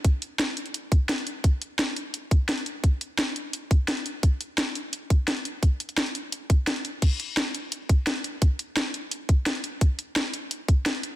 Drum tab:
CC |----------------|----------------|----------------|----------------|
HH |x-x-x-xxx-x-xxx-|x-x-x-x-x-x-xxx-|x-x-x-x-x-x-xxx-|x-x-x-x-x-x-xxx-|
SD |----o-------o---|----o-------o---|----o-------o---|----o-------o---|
BD |o---------o-----|o---------o-----|o---------o-----|o---------o-----|

CC |----------------|x---------------|----------------|----------------|
HH |x-xxxxx-x-x-xxx-|x-x-x-x-x-x-xxx-|x-x-x-x-x-x-xxx-|x-x-x-x-x-x-xxx-|
SD |----o-------o---|----o-------o---|----o-------o---|----o-------o---|
BD |o---------o-----|o---------o-----|o---------o-----|o---------o-----|